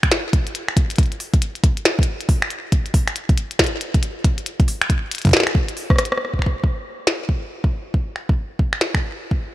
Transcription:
0.03 finger snap, kick, closed hi-hat
0.12 snare, closed hi-hat
0.33 kick, closed hi-hat
0.47 closed hi-hat
0.55 closed hi-hat
0.68 finger snap
0.77 kick, closed hi-hat
0.90 closed hi-hat
0.96 kick, closed hi-hat
0.98 closed hi-hat
1.03 closed hi-hat
1.06 closed hi-hat
1.12 closed hi-hat
1.20 open hi-hat
1.34 kick, closed hi-hat
1.42 closed hi-hat
1.55 closed hi-hat
1.64 kick, closed hi-hat
1.77 closed hi-hat
1.85 finger snap, snare, closed hi-hat
1.99 kick
2.03 closed hi-hat
2.21 closed hi-hat
2.29 kick, open hi-hat
2.42 finger snap
2.51 closed hi-hat
2.72 kick, closed hi-hat
2.86 closed hi-hat
2.94 kick, open hi-hat
3.08 finger snap, closed hi-hat
3.16 closed hi-hat
3.29 kick, closed hi-hat
3.38 closed hi-hat
3.51 closed hi-hat
3.59 finger snap, kick, snare, closed hi-hat
3.64 closed hi-hat
3.66 closed hi-hat
3.81 closed hi-hat
3.94 kick, closed hi-hat
4.03 closed hi-hat
4.24 kick, closed hi-hat
4.38 closed hi-hat
4.46 closed hi-hat
4.60 kick, closed hi-hat
4.68 open hi-hat
4.82 finger snap, closed hi-hat
4.90 kick, closed hi-hat
5.11 closed hi-hat
5.15 closed hi-hat
5.18 closed hi-hat
5.22 kick, closed hi-hat
5.25 kick, closed hi-hat
5.27 kick, closed hi-hat
5.29 kick, closed hi-hat
5.31 snare, closed hi-hat
5.33 snare, closed hi-hat
5.40 snare
5.43 finger snap, snare, closed hi-hat
5.55 kick
5.69 closed hi-hat
5.77 open hi-hat
5.90 kick, cross-stick
5.96 cross-stick
5.99 cross-stick, closed hi-hat
6.05 cross-stick, closed hi-hat
6.12 cross-stick
6.17 cross-stick
6.25 cross-stick
6.34 kick
6.39 finger snap, kick
6.46 kick
6.64 kick
7.07 snare
7.29 kick
7.64 kick
7.94 kick
8.16 finger snap
8.29 kick
8.59 kick
8.73 finger snap
8.81 snare
8.94 finger snap, kick
9.31 kick

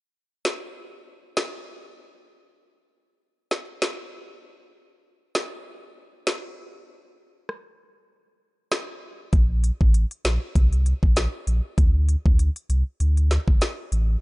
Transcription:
0.45 snare
1.37 snare
3.51 snare
3.82 snare
5.35 snare
6.27 snare
7.49 cross-stick
8.72 cross-stick, snare
9.33 A#1, kick, closed hi-hat
9.64 closed hi-hat
9.81 A1, kick
9.94 closed hi-hat
10.11 closed hi-hat
10.25 A#1, snare, closed hi-hat
10.55 C2, kick, closed hi-hat
10.73 closed hi-hat
10.86 closed hi-hat
11.03 A#1, kick
11.16 snare, closed hi-hat
11.47 A#1, closed hi-hat
11.78 D2, kick, closed hi-hat
12.09 closed hi-hat
12.26 D2, kick
12.39 closed hi-hat
12.56 closed hi-hat
12.69 C2, closed hi-hat
13.00 D2, closed hi-hat
13.17 closed hi-hat
13.31 snare, closed hi-hat
13.48 G1, kick
13.61 snare, closed hi-hat
13.92 A1, closed hi-hat

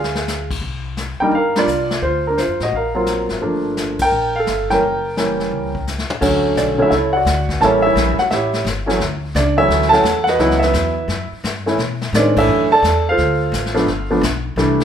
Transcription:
Already playing: D2 G#4 F5
0.04 snare
0.15 snare
0.28 snare, hi-hat pedal
0.51 kick, crash
0.61 C2, brush sweep
0.97 snare, hi-hat pedal
1.20 G3 A#3 D4 D#4 A#4 G5, muted upright bass stroke
1.31 G1 F5, brush sweep
1.37 A#4
1.56 G3 A#3 D4 F4 D5, snare, ride
1.61 F4
1.67 C2, hi-hat pedal
1.91 snare
2.02 D2 F4 C5, brush sweep
2.27 D4 A#4
2.38 F4 C5, snare, hi-hat pedal
2.48 F#2
2.60 A2 D#5, snare
2.65 F#4
2.72 A#1 F5, brush sweep
2.77 A#4
2.95 F#3 A#3 C4 F4
3.07 snare, hi-hat pedal
3.29 G#1, snare
3.41 G1 F3 A3 A#3 D4, brush sweep
3.77 snare, hi-hat pedal
3.99 G5, kick, ride
4.04 A#4
4.12 A#1, brush sweep
4.36 A4 F5
4.47 G1, snare, hi-hat pedal
4.70 E3 G3 A#3 C#4 A#4 G5, snare
4.82 F#1, brush sweep
5.17 E3 G3 A#3 C#4, snare, hi-hat pedal
5.40 snare
5.51 C#2, brush sweep
5.75 kick
5.87 snare, hi-hat pedal
5.98 snare
6.10 muted upright bass stroke, mid tom
6.21 D2 D3 F#3 A3 C#4, brush sweep, kick, snare, crash
6.56 B1 D4 D5, snare, hi-hat pedal
6.78 D3 F#3 A3 C#4
6.82 E4 E5
6.90 C#2 E4 A4 C#5 E5, brush sweep, snare
7.13 D5 F#5
7.17 F#4
7.25 D2, snare, hi-hat pedal
7.49 kick, snare
7.60 A1 E3 G3 A#3 C#4 A4 A5, brush sweep, snare
7.65 C#5 E5
7.82 C#5 E5
7.87 E4
7.95 A#1, snare, hi-hat pedal
8.18 F#4 F#5, muted upright bass stroke, snare
8.30 A1 E4 G4 C#5 E5, brush sweep, snare
8.54 snare
8.65 G1, snare, hi-hat pedal
8.86 E3 F#3 A3 C#4, snare
8.99 D2, brush sweep, snare
9.35 C#2 D4 D5, snare, hi-hat pedal
9.57 E3 F#3 A3 C#4 E4 C#5 E5
9.68 D2, brush sweep, snare
9.82 snare
9.89 E3 F#3 A3 C#4 A5, snare
9.94 A4 F#5
10.04 E2, snare, hi-hat pedal
10.24 F#5, snare
10.29 F#4 B4 D#5
10.39 C#2 E3 F#3 B3 E4, brush sweep, snare
10.51 snare
10.59 E5, snare
10.64 E4 B4
10.73 E2, snare, hi-hat pedal
11.08 F#2, brush sweep, snare
11.32 muted upright bass stroke
11.44 G2, snare, hi-hat pedal
11.66 E3 A3 C#4 E4, snare
11.78 B2, brush sweep, snare
12.02 snare
12.13 A2 D#3 G#3 C4 C#4 D5, snare, hi-hat pedal
12.17 D4
12.36 E3 A3 C#4 D4 E4 A4 E5, kick, crash
12.48 F#2, brush sweep
12.72 A4 D5 A5
12.83 E2, snare, hi-hat pedal
13.09 F4 A4 C5 F5
13.18 D2, brush sweep, snare
13.52 A1, snare, hi-hat pedal
13.66 snare
13.74 F3 A3 B3 D4, snare
13.87 G1, brush sweep, snare
14.11 F3 A3 B3 D4
14.21 B1, snare, hi-hat pedal
14.56 C2 E3 G3 A3 D4, brush sweep, snare
14.80 snare

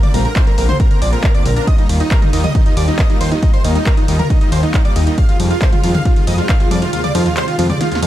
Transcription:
0.03 D2 D5 D6, closed hi-hat, mid tom
0.14 A#1 D3 G3 A#3 C4 F4 A#4 A#5, open hi-hat
0.25 D3 A#4 A#5, closed hi-hat
0.36 D2 D3 A#3 C4 F4 C5 C6, kick, clap, closed hi-hat
0.47 G3 A#4 A#5, closed hi-hat
0.58 A#1 D3 A#3 C4 F4 A#4 A#5, open hi-hat
0.69 D2 C5 C6, closed hi-hat, mid tom
0.80 D3 G3 A#3 C4 F4 A#4 A#5, kick, closed hi-hat
0.91 D3 A#3 C4 F4 A#4 A#5, closed hi-hat
1.02 A#1 G#3 D5 D6, open hi-hat
1.13 A#2 D3 A#3 C4 F4 A#4 A#5, closed hi-hat
1.24 A#4 A#5, kick, clap, closed hi-hat
1.34 D2 D3 A#3 C4 F4 D5 D6, closed hi-hat
1.45 A#1 D3 A#4 A#5, open hi-hat
1.56 D3 A#3 C4 D4 F4 A#4 A#5, closed hi-hat
1.67 D#2 D#3 G3 A#3 F4 D#5 D#6, kick, closed hi-hat, ride
1.78 G3 D#4 D#5, closed hi-hat
1.89 D#2 D#3 G3 A#3 F4, open hi-hat, ride
2.00 D#2 D#4 D#5, closed hi-hat
2.11 D#3 G3 A#3 F4 A#4 A#5, kick, clap, closed hi-hat, ride
2.22 D#3 D#4 D#5, closed hi-hat, mid tom
2.33 D#2 D#3 G3 A#3 D#4 F4 D#5, open hi-hat, ride
2.44 G3 D#5 D#6, closed hi-hat, mid tom
2.55 D#3 G3 A#3 D#4 F4 D#5, kick, closed hi-hat, ride
2.66 D#2 D#3 G3 A#3 D#4 F4 D#5, closed hi-hat
2.77 D#2 G3 D5 D6, open hi-hat, ride
2.88 D#3 G3 A#3 D#4 F4 D#5, closed hi-hat
2.99 D#2 D#5 D#6, kick, clap, closed hi-hat, ride
3.10 D#3 G3 A#3 D#4 F4 D#5, closed hi-hat
3.21 D#2 D#3 C5 C6, open hi-hat, ride
3.31 D#2 D#3 G3 A#3 D#4 F4 D#5, closed hi-hat
3.42 D#3 G3 A#3 D#4 F4 D#5, kick, closed hi-hat, ride
3.53 D#3 C5 C6, closed hi-hat
3.64 D#2 D#3 G3 A#3 D#4 F4 D#5, open hi-hat, ride
3.75 G3 D#4 D#5, closed hi-hat
3.86 D#3 G3 A#3 F4 A#4 A#5, kick, clap, closed hi-hat, ride
3.97 D#2 D#4 D#5, closed hi-hat
4.08 D#2 D#3 G3 A#3 D#4 F4 D#5, open hi-hat, ride
4.19 D#3 A#4 A#5, closed hi-hat, mid tom
4.30 D#2 D#3 G3 A#3 D#4 F4 D#5, kick, closed hi-hat, ride
4.41 D#3 G3 A#3 D#4 F4 D#5, closed hi-hat
4.52 D#2 D#3 C5 C6, open hi-hat, ride
4.63 D#2 D#3 G3 A#3 D#4 F4 D#5, closed hi-hat
4.74 G3 D#4 D#5, kick, clap, closed hi-hat, ride
4.85 D#3 G3 A#3 F4 D5 D6, closed hi-hat
4.96 D#2 D#4 D#5, open hi-hat, ride
5.07 D#3 G3 A#3 D#4 F4 D#5, closed hi-hat
5.18 C3 D#3 F3 G#3 F4 F5 F6, kick, closed hi-hat, ride
5.29 D#2 F4 F5, closed hi-hat
5.40 F2 C3 F3 G3 G#3 F4, open hi-hat, ride
5.50 D#3 F4 F5, closed hi-hat
5.61 D#2 C3 F3 G#3 F4 C5 C6, kick, clap, closed hi-hat, ride
5.72 G3 F4 F5, closed hi-hat, mid tom
5.83 F2 C3 D#3 F3 G#3 F4 F5, open hi-hat, ride
5.94 D#2 F5 F6, closed hi-hat, mid tom
6.05 C3 F3 G3 G#3 F4 F5, kick, closed hi-hat, ride
6.16 C3 D#3 F3 G#3 F4 F5, closed hi-hat
6.27 D#2 F2 D#5 D#6, open hi-hat, ride
6.38 C3 F3 G3 G#3 F4 F5, closed hi-hat
6.49 D#3 F5 F6, kick, clap, closed hi-hat, ride
6.60 D#2 C3 F3 G#3 F4 F5, closed hi-hat
6.71 F2 G3 D5 D6, open hi-hat, ride
6.82 C3 D#3 F3 G#3 F4 F5, closed hi-hat
6.93 D#2 C3 F3 G#3 F4 F5, closed hi-hat, ride
7.04 G3 D5 D6, closed hi-hat, mid tom
7.15 F2 C3 D#3 F3 G#3 F4 F5, open hi-hat, ride
7.26 D#2 F4 F5, closed hi-hat
7.37 C3 F3 G3 G#3 F4 C5 C6, clap, closed hi-hat, ride
7.48 D#3 F4 F5, closed hi-hat
7.59 D#2 F2 C3 F3 G#3 F4 F5, open hi-hat, ride
7.70 G3 D5 D6, closed hi-hat, mid tom
7.80 C3 D#3 F3 G#3 F4 F5, snare, closed hi-hat, ride
7.91 D#2 C3 F3 G#3 F4 F5, snare, closed hi-hat
8.02 F2 A#3 F5 F6, open hi-hat, ride

